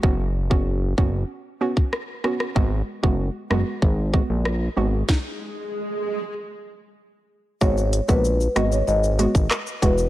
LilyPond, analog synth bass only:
\new Staff \with { instrumentName = "Analog synth bass" } { \clef bass \time 4/4 \key gis \minor \tempo 4 = 95 fis,,4. fis,,8 r2 | gis,,8 r16 fis,,8 r16 fis,,16 r16 gis,,8. ais,,8. gis,,8 | r1 | gis,,8. ais,,8. gis,,8 gis,,8. gis,,16 r8 e,,8 | }